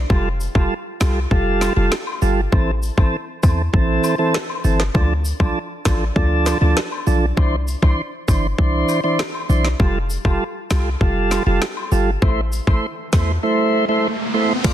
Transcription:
0.10 808-style bass F1, tonewheel organ G3 F4 A4, kick, high woodblock
0.40 cabasa
0.55 808-style bass F1, tonewheel organ G3 F4 A4, kick, high woodblock
1.00 808-style bass C2, tonewheel organ G3 F4 A4, kick, cross-stick, snare, cabasa, high woodblock
1.31 808-style bass F1, tonewheel organ G3 F4 A4, kick
1.61 snare, cabasa, high woodblock
1.76 808-style bass F1, tonewheel organ G3 F4 A4
1.92 cross-stick, snare
2.07 high woodblock
2.22 808-style bass G1, tonewheel organ G3 F4 A4, cabasa
2.52 808-style bass A1, tonewheel organ E3 C4 A4, kick, high woodblock
2.83 cabasa
2.98 808-style bass A1, tonewheel organ E3 C4 A4, kick, high woodblock
3.43 808-style bass E2, tonewheel organ E3 C4 A4, kick, cabasa, high woodblock
3.73 808-style bass A1, tonewheel organ E3 C4 A4, kick
4.04 cabasa, high woodblock
4.18 tonewheel organ E3 C4 A4
4.34 cross-stick, snare
4.50 high woodblock
4.64 808-style bass G1, tonewheel organ E3 C4 A4, cabasa
4.80 snare
4.94 808-style bass D2, tonewheel organ F3 D4 A4, kick, high woodblock
5.25 cabasa
5.40 808-style bass B1, tonewheel organ F3 D4 A4, kick, high woodblock
5.85 808-style bass A1, tonewheel organ F3 D4 A4, kick, cross-stick, snare, cabasa, high woodblock
6.15 808-style bass D2, tonewheel organ F3 D4 A4, kick
6.46 snare, cabasa, high woodblock
6.61 808-style bass D2, tonewheel organ F3 D4 A4
6.77 cross-stick, snare
6.92 high woodblock
7.07 808-style bass B1, tonewheel organ F3 D4 A4, cabasa
7.37 808-style bass C2, tonewheel organ E3 D4 C5, kick, high woodblock
7.68 cabasa
7.82 808-style bass C2, tonewheel organ E3 D4 C5, kick, high woodblock
8.28 808-style bass G1, tonewheel organ E3 D4 C5, kick, cabasa, high woodblock
8.58 808-style bass C2, tonewheel organ E3 D4 C5, kick
8.89 cabasa, high woodblock
9.04 tonewheel organ E3 D4 C5
9.19 cross-stick, snare
9.35 high woodblock
9.49 808-style bass B1, tonewheel organ E3 D4 C5, cabasa
9.65 snare
9.79 808-style bass F1, tonewheel organ G3 F4 A4, kick, high woodblock
10.10 cabasa
10.25 808-style bass F1, tonewheel organ G3 F4 A4, kick, high woodblock
10.71 808-style bass C2, tonewheel organ G3 F4 A4, kick, cross-stick, snare, cabasa, high woodblock
11.01 808-style bass F1, tonewheel organ G3 F4 A4, kick
11.31 snare, cabasa, high woodblock
11.46 808-style bass F1, tonewheel organ G3 F4 A4
11.62 cross-stick, snare
11.77 high woodblock
11.92 808-style bass G1, tonewheel organ G3 F4 A4, cabasa
12.22 808-style bass A1, tonewheel organ A3 E4 C5, kick, riser, high woodblock
12.52 cabasa
12.67 808-style bass A1, tonewheel organ A3 E4 C5, kick, high woodblock
13.13 808-style bass E2, tonewheel organ A3 E4 C5, kick, cross-stick, snare, cabasa, high woodblock
13.43 tonewheel organ A3 E4 C5
13.88 tonewheel organ A3 E4 C5
14.34 tonewheel organ A3 E4 C5
14.64 808-style bass D2, tonewheel organ A3 F4 D5, kick, closed hi-hat, crash, high woodblock

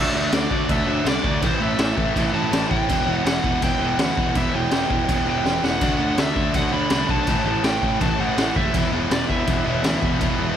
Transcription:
Already playing: distorted electric guitar D3 A3 D4 F#4, overdriven electric guitar E5
0.14 picked electric bass D2, distorted electric guitar D3 A3 D4
0.32 picked electric bass D2, distorted electric guitar D3 A3 D4, overdriven electric guitar D5, snare, crash
0.51 picked electric bass D2, distorted electric guitar D3 A3 D4, kick
0.69 picked electric bass D2, distorted electric guitar D3 A3 D4, overdriven electric guitar E5, kick, crash
0.87 picked electric bass D2, distorted electric guitar D3 A3 D4 F#4
1.05 picked electric bass C2, distorted electric guitar D3 A3 D4 F#4, overdriven electric guitar D5, snare, crash
1.24 picked electric bass D2, distorted electric guitar D3 A3 D4, kick
1.41 picked electric bass A1, distorted electric guitar A2 E3 A3 C4 E4, overdriven electric guitar C5, kick, crash
1.60 picked electric bass A1, distorted electric guitar A2 E3 A3, overdriven electric guitar E5
1.78 picked electric bass A1, distorted electric guitar A2 E3 A3, snare, crash
1.97 picked electric bass A1, distorted electric guitar A2 E3 A3, kick
2.15 picked electric bass A1, distorted electric guitar A2 E3 A3, kick, crash
2.33 picked electric bass A1, distorted electric guitar A2 E3 A3 C4 E4, overdriven electric guitar A5
2.52 picked electric bass A1, distorted electric guitar A2 E3 A3 C4 E4, snare, crash
2.69 picked electric bass A1, distorted electric guitar A2 E3 A3, overdriven electric guitar G5, kick
2.89 picked electric bass E1, distorted electric guitar E2 B2 E3 G3 B3 E4, kick, crash
3.06 picked electric bass E1, distorted electric guitar E2 B2 E3
3.12 overdriven electric guitar F#5
3.25 picked electric bass E1, distorted electric guitar E2 B2 E3, overdriven electric guitar F#5, snare, crash
3.44 picked electric bass E1, distorted electric guitar E2 B2 E3, kick
3.62 picked electric bass E1, distorted electric guitar E2 B2 E3, overdriven electric guitar G5, kick, crash
3.79 picked electric bass E1, distorted electric guitar E2 B2 E3 G3 B3 E4
3.98 picked electric bass D2, distorted electric guitar E2 B2 E3 G3 B3 E4, overdriven electric guitar F#5, snare, crash
4.17 picked electric bass E1, distorted electric guitar E2 B2 E3, kick
4.34 picked electric bass E1, distorted electric guitar E2 B2 E3 G3 B3 E4, overdriven electric guitar E5, kick, crash
4.53 picked electric bass E1, distorted electric guitar E2 B2 E3, overdriven electric guitar G5
4.71 picked electric bass E1, distorted electric guitar E2 B2 E3, snare, crash
4.90 picked electric bass E1, distorted electric guitar E2 B2 E3, kick
5.09 picked electric bass E1, distorted electric guitar E2 B2 E3, kick, crash
5.26 picked electric bass E1, distorted electric guitar E2 B2 E3 G3 B3 E4, overdriven electric guitar G5
5.45 picked electric bass E1, distorted electric guitar E2 B2 E3 G3 B3 E4, snare
5.63 picked electric bass E1, distorted electric guitar E2 B2 E3, overdriven electric guitar F#5, snare
5.81 picked electric bass D2, distorted electric guitar D3 A3 D4 F#4, kick, crash
6.00 picked electric bass D2, distorted electric guitar D3 A3 D4
6.18 picked electric bass D2, distorted electric guitar D3 A3 D4, overdriven electric guitar E5, snare, crash
6.36 picked electric bass D2, distorted electric guitar D3 A3 D4, kick
6.54 picked electric bass D2, distorted electric guitar D3 A3 D4, overdriven electric guitar F#5, kick, crash
6.72 picked electric bass D2, distorted electric guitar D3 A3 D4 F#4, overdriven electric guitar B5
6.90 picked electric bass C2, distorted electric guitar D3 A3 D4 F#4, snare, crash
7.08 picked electric bass B1, distorted electric guitar D3 A3 D4, overdriven electric guitar A5, kick
7.27 picked electric bass A1, distorted electric guitar A2 E3 A3 C4 E4, kick, crash
7.46 picked electric bass A1, distorted electric guitar A2 E3 A3
7.64 picked electric bass A1, distorted electric guitar A2 E3 A3, overdriven electric guitar G5, snare, crash
7.82 picked electric bass A1, distorted electric guitar A2 E3 A3, kick
8.01 picked electric bass A1, distorted electric guitar A2 E3 A3, overdriven electric guitar A5, kick, crash
8.19 picked electric bass A1, distorted electric guitar A2 E3 A3 C4 E4, overdriven electric guitar F#5
8.37 picked electric bass A1, distorted electric guitar A2 E3 A3 C4 E4, snare, crash
8.55 picked electric bass F#1, distorted electric guitar A2 E3 A3, overdriven electric guitar E5, kick
8.73 picked electric bass E1, distorted electric guitar E2 B2 E3 G3 B3 E4, kick, crash
8.93 picked electric bass E1, distorted electric guitar E2 B2 E3
9.10 picked electric bass E1, distorted electric guitar E2 B2 E3, overdriven electric guitar D5, snare, crash
9.29 picked electric bass E1, distorted electric guitar E2 B2 E3, overdriven electric guitar E5, kick
9.47 picked electric bass E1, distorted electric guitar E2 B2 E3, kick, crash
9.65 picked electric bass E1, distorted electric guitar E2 B2 E3 G3 B3 E4
9.83 picked electric bass D2, distorted electric guitar E2 B2 E3 G3 B3 E4, snare, crash
10.02 picked electric bass E1, distorted electric guitar E2 B2 E3, kick
10.20 picked electric bass E1, distorted electric guitar E2 B2 E3 G3 B3 E4, kick, crash
10.37 picked electric bass E1, distorted electric guitar E2 B2 E3

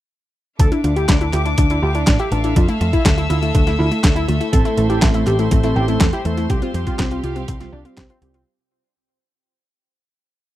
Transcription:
0.59 picked electric bass D2, synth arpeggio sound D4, string section A4 E5 F5 D6, analog synth lead A4, kick, closed hi-hat
0.72 analog synth lead D4, synth arpeggio sound E4, closed hi-hat
0.84 picked electric bass D2, analog synth lead D4, synth arpeggio sound F4, closed hi-hat
0.96 synth arpeggio sound E4, analog synth lead G4, closed hi-hat
1.09 picked electric bass D2, analog synth lead D4, synth arpeggio sound D4, kick, snare, clap, closed hi-hat
1.21 analog synth lead D4, synth arpeggio sound E4, closed hi-hat
1.33 picked electric bass D2, synth arpeggio sound F4, analog synth lead G4, clap, closed hi-hat
1.46 analog synth lead D4, synth arpeggio sound E4, closed hi-hat
1.58 picked electric bass D2, analog synth lead D4, synth arpeggio sound D4, kick, closed hi-hat
1.70 analog synth lead D4, synth arpeggio sound E4, closed hi-hat
1.82 picked electric bass D2, synth arpeggio sound F4, analog synth lead G4
1.95 analog synth lead D4, synth arpeggio sound E4, closed hi-hat
2.07 picked electric bass A1, analog synth lead D4, synth arpeggio sound D4, kick, snare, clap, closed hi-hat
2.19 synth arpeggio sound E4, analog synth lead G4, closed hi-hat
2.32 picked electric bass A1, analog synth lead D4, synth arpeggio sound F4, closed hi-hat
2.44 analog synth lead D4, synth arpeggio sound E4, closed hi-hat
2.56 picked electric bass F2, synth arpeggio sound D4, analog synth lead F4, string section E6, kick, closed hi-hat
2.68 analog synth lead A3, synth arpeggio sound E4, closed hi-hat
2.81 picked electric bass F2, analog synth lead A3, synth arpeggio sound F4, closed hi-hat
2.93 analog synth lead E4, synth arpeggio sound E4, kick, closed hi-hat
3.05 picked electric bass D2, analog synth lead A3, synth arpeggio sound D4, kick, snare, clap, closed hi-hat
3.18 analog synth lead A3, synth arpeggio sound E4, closed hi-hat
3.30 picked electric bass D2, analog synth lead E4, synth arpeggio sound F4, closed hi-hat
3.42 analog synth lead A3, synth arpeggio sound E4, closed hi-hat
3.54 picked electric bass D2, analog synth lead A3, synth arpeggio sound D4, kick, closed hi-hat
3.67 analog synth lead A3, synth arpeggio sound E4, snare, closed hi-hat
3.79 picked electric bass D2, analog synth lead E4, synth arpeggio sound F4
3.91 analog synth lead A3, synth arpeggio sound E4, closed hi-hat
4.03 picked electric bass D2, analog synth lead A3, synth arpeggio sound D4, kick, snare, clap, closed hi-hat
4.16 analog synth lead E4, synth arpeggio sound E4, closed hi-hat
4.28 picked electric bass D2, analog synth lead A3, synth arpeggio sound F4, closed hi-hat
4.40 analog synth lead A3, synth arpeggio sound E4, closed hi-hat
4.53 picked electric bass A1, analog polysynth A3 C4 E4 A4, synth arpeggio sound C4, analog synth lead A4, string section C5 C6, kick, closed hi-hat
4.65 analog synth lead A3, synth arpeggio sound E4, closed hi-hat
4.77 picked electric bass A1, analog synth lead A3, synth arpeggio sound A4, closed hi-hat
4.90 analog polysynth A3 C4 E4 A4, synth arpeggio sound E4, analog synth lead G4, closed hi-hat
5.02 picked electric bass A1, analog synth lead A3, synth arpeggio sound C4, kick, snare, clap, closed hi-hat
5.14 analog synth lead A3, synth arpeggio sound E4, closed hi-hat
5.27 picked electric bass A1, analog polysynth A3 C4 E4 G4, analog synth lead G4, synth arpeggio sound A4, clap, closed hi-hat
5.39 analog synth lead A3, synth arpeggio sound E4, closed hi-hat
5.51 picked electric bass A1, analog synth lead A3, synth arpeggio sound C4, kick, closed hi-hat
5.63 analog polysynth A3 C4 E4 A4, analog synth lead A3, synth arpeggio sound E4, closed hi-hat
5.76 picked electric bass A1, analog synth lead G4, synth arpeggio sound A4
5.88 analog polysynth A3 C4 E4 A4, analog synth lead A3, synth arpeggio sound E4, closed hi-hat
6.00 picked electric bass E2, analog synth lead A3, synth arpeggio sound C4, kick, snare, clap, closed hi-hat
6.13 synth arpeggio sound E4, analog synth lead G4, closed hi-hat
6.25 picked electric bass E2, analog polysynth A3 C4 E4 A4, analog synth lead A3, synth arpeggio sound A4, closed hi-hat
6.37 analog synth lead A3, synth arpeggio sound E4, closed hi-hat
6.49 picked electric bass C2, analog polysynth G3 C4 G4, synth arpeggio sound C4, string section G4 F5, analog synth lead G4, kick, closed hi-hat
6.62 analog synth lead C4, synth arpeggio sound F4, closed hi-hat
6.74 picked electric bass F2, analog synth lead C4, synth arpeggio sound G4, closed hi-hat
6.87 analog polysynth G3 C4 F4 G4, synth arpeggio sound F4, analog synth lead F4, kick, closed hi-hat
6.99 picked electric bass C2, synth arpeggio sound C4, analog synth lead C4, kick, snare, clap, closed hi-hat
7.11 analog synth lead C4, synth arpeggio sound F4, closed hi-hat
7.23 picked electric bass C2, analog polysynth G3 C4 F4 G4, analog synth lead F4, synth arpeggio sound G4, closed hi-hat
7.36 analog synth lead C4, synth arpeggio sound F4, closed hi-hat
7.48 picked electric bass C2, analog synth lead C4, synth arpeggio sound C4, kick, closed hi-hat
7.60 analog polysynth G3 C4 F4 G4, analog synth lead C4, synth arpeggio sound F4, snare, closed hi-hat
7.73 picked electric bass C2, analog synth lead D4, synth arpeggio sound G4
7.85 analog polysynth G3 C4 F4 G4, analog synth lead C4, synth arpeggio sound F4, closed hi-hat
7.97 picked electric bass C2, synth arpeggio sound C4, analog synth lead C4, kick, snare, clap, closed hi-hat
8.10 analog synth lead C4, synth arpeggio sound F4, closed hi-hat
8.22 picked electric bass C2, analog polysynth G3 C4 F4 G4, analog synth lead C4, synth arpeggio sound G4, closed hi-hat
8.34 analog synth lead C4, synth arpeggio sound F4, closed hi-hat

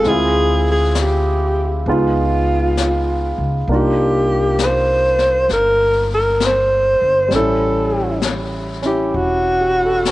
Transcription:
0.00 grand piano G#3 C4, brush sweep, snare
0.05 upright bass D2, grand piano E4, alto saxophone G#4
0.10 grand piano F4
0.71 alto saxophone G#4
0.95 snare, hi-hat pedal
1.02 alto saxophone G4
1.86 upright bass C#2, grand piano G#3 B3 D#4 F4, brush sweep
1.93 alto saxophone F4
2.77 snare, hi-hat pedal
3.38 upright bass C#2
3.67 upright bass C2, grand piano A#3 D4 D#4, brush sweep
3.72 grand piano F4, alto saxophone G4
4.59 snare, hi-hat pedal
4.65 alto saxophone C5
5.18 snare
5.49 upright bass G1, alto saxophone A#4, brush sweep, snare
6.14 alto saxophone A#4
6.40 snare, hi-hat pedal
6.45 alto saxophone C5
7.01 upright bass G1
7.28 upright bass A1, grand piano G3 C#4, brush sweep, snare
7.35 grand piano E4, alto saxophone A4
8.22 snare, hi-hat pedal
8.82 grand piano C#4 E4, snare
8.87 alto saxophone G4
9.13 upright bass E1, alto saxophone F#4, brush sweep
9.61 grand piano G4
9.85 grand piano A4
10.05 grand piano B4, snare, hi-hat pedal

